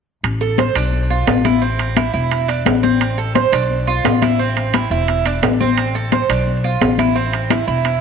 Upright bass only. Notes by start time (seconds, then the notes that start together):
0.23 A1
0.76 B1
1.27 A1
2.14 E1
2.66 A1
3.52 B1
4.04 A1
4.90 E1
5.42 A1
6.29 B1
6.81 A1
7.67 E1